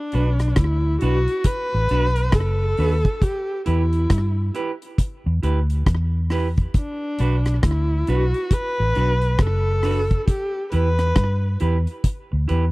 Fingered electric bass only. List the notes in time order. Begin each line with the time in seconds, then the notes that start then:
0.14 B1
0.58 D2
1.02 B1
1.74 A1
1.91 B1
2.34 F#1
2.79 D#2
3.67 E2
4.11 G2
5.26 E2
5.43 D2
5.87 E2
7.20 B1
7.64 D2
8.08 B1
8.80 A1
8.97 B1
9.40 F#1
10.73 E2
11.17 G2
11.62 E2
12.33 D2
12.50 E2